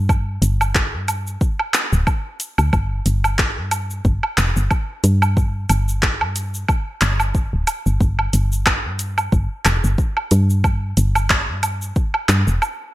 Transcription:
Already playing: G2
0.09 kick, cabasa, low woodblock
0.42 G1, closed hi-hat, cabasa
0.61 cabasa, low woodblock
0.75 kick, clap, cabasa
0.93 G2
1.08 closed hi-hat, cabasa, low woodblock
1.27 cabasa
1.41 kick, cabasa
1.59 low woodblock
1.74 clap, closed hi-hat, cabasa
1.93 D1, cabasa
2.07 kick, cabasa, low woodblock
2.40 closed hi-hat, cabasa
2.58 D2, cabasa, low woodblock
2.73 G1, kick, cabasa, low woodblock
3.06 G1, closed hi-hat, cabasa
3.24 cabasa, low woodblock
3.39 kick, clap, cabasa
3.57 G2
3.71 closed hi-hat, cabasa, low woodblock
3.90 cabasa
4.05 G1, kick, cabasa
4.23 low woodblock
4.38 F1, clap, closed hi-hat, cabasa
4.56 G1, cabasa
4.71 kick, cabasa, low woodblock
5.04 G2, closed hi-hat, cabasa
5.22 cabasa, low woodblock
5.37 kick, cabasa
5.69 G1, closed hi-hat, cabasa, low woodblock
5.88 cabasa
6.03 kick, clap, cabasa
6.21 G2, low woodblock
6.36 closed hi-hat, cabasa
6.54 cabasa
6.68 kick, cabasa, low woodblock
7.01 G1, clap, closed hi-hat, cabasa
7.20 cabasa, low woodblock
7.35 kick, cabasa
7.53 D1
7.67 closed hi-hat, cabasa, low woodblock
7.86 G1, cabasa
8.01 G1, kick, cabasa
8.19 low woodblock
8.33 G1, closed hi-hat, cabasa
8.52 cabasa
8.66 kick, clap, cabasa, low woodblock
8.85 G2
8.99 closed hi-hat, cabasa
9.18 cabasa, low woodblock
9.32 G1, kick, cabasa
9.65 F1, clap, closed hi-hat, cabasa, low woodblock
9.84 G1, cabasa
9.98 kick, cabasa
10.17 low woodblock
10.31 G2, closed hi-hat, cabasa
10.50 cabasa
10.64 kick, cabasa, low woodblock
10.97 G1, closed hi-hat, cabasa
11.15 cabasa, low woodblock
11.30 kick, clap, cabasa
11.49 G2
11.63 closed hi-hat, cabasa, low woodblock
11.82 cabasa
11.96 kick, cabasa
12.14 low woodblock
12.29 G2, clap, closed hi-hat, cabasa
12.47 F1, cabasa
12.62 cabasa, low woodblock

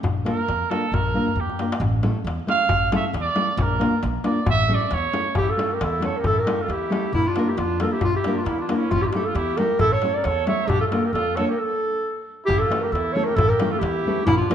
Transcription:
0.03 A#1, darbuka dum
0.17 darbuka tek
0.25 A#3 D4 F4 A#4, darbuka tek
0.48 F2, darbuka tek
0.62 darbuka tek
0.70 A#3 D4 F4 A4 A#4, darbuka tek
0.92 A#1 A#4, darbuka dum
1.06 darbuka tek
1.14 A#3 D4 F4 A#4
1.28 darbuka dum
1.35 F2, darbuka dum
1.40 G4
1.49 darbuka dum
1.59 A#3 D4 F4 A#4, darbuka tek
1.72 darbuka tek
1.80 A1, darbuka dum
1.95 darbuka tek
2.03 A3 C#4 E4 A4, darbuka tek
2.24 E2, darbuka tek
2.39 darbuka tek
2.47 A3 C#4 E4 A4 F5, darbuka tek
2.69 A1, darbuka dum
2.82 darbuka tek
2.92 A3 C#4 E4 A4, darbuka tek
2.96 E5
3.13 E2, darbuka tek
3.21 D5
3.25 darbuka tek
3.35 A3 C#4 E4 A4, darbuka tek
3.57 A#1, darbuka dum
3.62 A#4
3.72 darbuka tek
3.79 A#3 D4 F4 A#4, darbuka tek
4.03 A#1, darbuka tek
4.15 darbuka tek
4.24 A#3 D4 F4 A#4 D5, darbuka tek
4.46 A1 E5, darbuka dum
4.59 darbuka tek
4.68 A3 C#4 E4 A4
4.74 D5
4.91 E2 C#5, darbuka tek
5.13 A3 C#4 E4 A4, darbuka tek
5.26 darbuka tek
5.35 A1 G4, darbuka dum
5.40 E4
5.48 F4 A4, darbuka tek
5.57 A3 C#4 E4 A4, darbuka tek
5.71 G4 A#4, darbuka tek
5.81 E2 E4 A4, darbuka tek
6.00 A3 C#4 E4 A4, darbuka tek
6.05 A4 C#5
6.17 G4 A#4
6.24 A1 A4, darbuka dum
6.28 E4
6.38 A#4, darbuka tek
6.42 C#4 G4
6.46 A3 E4 A4, darbuka tek
6.59 F4 A4, darbuka tek
6.68 E2 E4 G4, darbuka tek
6.90 A3 C#4 E4 A4, darbuka tek
7.13 A#1 A#3 E4, darbuka dum
7.26 D4 F4, darbuka tek
7.36 A#3 D4 F4 A#4, darbuka tek
7.48 E4 G4, darbuka tek
7.57 F2 D4 F4, darbuka tek
7.80 A#3 D4 F4 A4 A#4, darbuka tek
7.92 E4 G4
8.01 A#1 D4 F4, darbuka dum
8.14 E4 G4
8.24 A#3 D4 F4 A#4, darbuka tek
8.35 D4 F4
8.45 E2 A#3 E4, darbuka tek
8.59 D4 F4, darbuka tek
8.68 A#3 D4 F4 A#4, darbuka tek
8.76 C#4 E4
8.82 darbuka tek
8.90 A1 C#4 F4, darbuka dum
9.02 E4 G4, darbuka tek
9.06 D4 F4
9.12 A3 C#4 E4 G4, darbuka tek
9.16 A4
9.25 F4 A4, darbuka tek
9.35 E2 E4 G4, darbuka tek
9.57 A3 C#4 E4 G4 A4 A#4, darbuka tek
9.79 A1 E4 A4, darbuka dum
9.92 A4 C#5, darbuka tek
10.02 A3 C#4 E4 A4, darbuka tek
10.13 D5, darbuka tek
10.18 A#4
10.24 E2 A4 C#5, darbuka tek
10.47 A3 C#4 E4 A4 C#5 E5, darbuka tek
10.67 A#1 D4 G4, darbuka dum
10.80 F4 A4, darbuka tek
10.86 F4 A4
10.90 A#3 D4 F4 A4 A#4, darbuka tek
11.05 G4 A#4, darbuka tek
11.13 F2 F4 A4, darbuka tek
11.36 A#3 D4 F4 A4 A#4 C#5, darbuka tek
11.48 G4 A#4
11.59 A4
12.45 A1 E4 G4, darbuka dum
12.59 F4 A4, darbuka tek
12.69 E3 A3 C#4 E4 A4, darbuka tek
12.80 G4 A#4, darbuka tek
12.91 E2 E4 A4
12.95 darbuka tek
13.12 E3 A3 C#4 E4 A4 C#5
13.16 A4
13.24 G4 A#4
13.35 A1 E4 A4, darbuka dum
13.48 G4 A#4, darbuka tek
13.60 E3 A3 C#4 E4 A4, darbuka tek
13.71 F4 A4, darbuka tek
13.79 E2 E4 G4, darbuka tek
14.05 E3 A3 C#4 E4 A4
14.25 A#1 A#3 E4, darbuka dum
14.37 D4 F4
14.41 darbuka tek
14.49 F3 A#3 D4 F4 A#4, darbuka tek

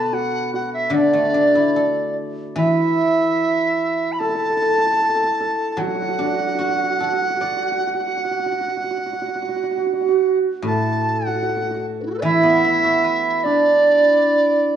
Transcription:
Already playing: B2 D3 A4 B4 D5
0.03 A5
0.13 F#4 F#5
0.54 F#4 F#5
0.74 E5
0.90 D3 D5
0.94 D4
1.13 A3
1.34 D4
1.55 E4
1.76 A4
2.56 E3 E4 E5
4.12 B5
4.19 A4 A5
4.29 A4
4.35 A4
4.41 A4
4.50 A4
4.57 A4
4.62 A4
4.70 A4
4.78 A4
4.93 A4
5.01 A4
5.09 A4
5.16 A4
5.23 A4
5.40 A4
5.72 A5
5.77 F#3 F#5
5.81 F#4
5.88 F#4
5.95 F#4
6.02 F#4
6.09 F#4
6.18 D4 F#4
6.25 F#4
6.33 F#4
6.40 F#4
6.46 F#4
6.55 F#4
6.61 F#4
6.69 F#4
6.76 F#4
6.83 F#4
6.90 F#4
6.99 F#4 A4
7.07 F#4
7.13 F#4
7.21 F#4
7.30 F#4
7.36 F#4
7.41 F#4 D5
7.52 F#4
7.56 F#4
7.62 F#4
7.71 F#4
7.80 F#4
7.87 F#4
7.94 F#4
8.00 F#4
8.07 F#4
8.17 F#4
8.25 F#4
8.31 F#4
8.39 F#4
8.46 F#4
8.52 F#4
8.61 F#4
8.68 F#4
8.77 F#4
8.84 F#4
8.91 F#4
8.98 F#4
9.06 F#4
9.13 F#4
9.21 F#4
9.28 F#4
9.35 F#4
9.42 F#4
9.49 F#4
9.56 F#4
9.63 F#4
9.71 F#4
9.77 F#4
9.86 F#4
9.93 F#4
10.01 F#4
10.09 F#4
10.63 A2 A4
10.67 A5
11.27 F#4 F#5
11.35 F#4
11.42 F#4
11.49 F#4
11.57 F#4
11.62 F#4
11.71 F#4
12.00 D4 B4
12.06 E4
12.10 F#4 A4
12.18 E3 B4 D5
12.24 E4 E5
12.43 B3
12.65 E4
12.84 F#4
13.04 B4
13.44 D4 D5

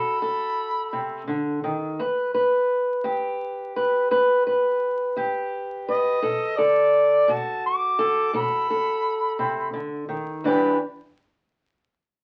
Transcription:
Already playing: B2 F#4 A4 B5
0.22 A4
0.93 C3
1.27 D3
1.64 D#3
1.99 E2 B4
2.34 B4
3.04 E2 G4
3.76 B4
4.11 E2 B4
4.47 B4
5.16 E2 G4
5.88 B4 D#5
6.22 B2 A4
6.58 A4 D5
7.28 B2 F#4 A5
7.66 D6
7.99 A4
8.33 B2 A4 B5
8.70 A4
9.39 C3
9.73 D3
10.09 D#3
10.44 E2 E3 D4 G4 B4 B5

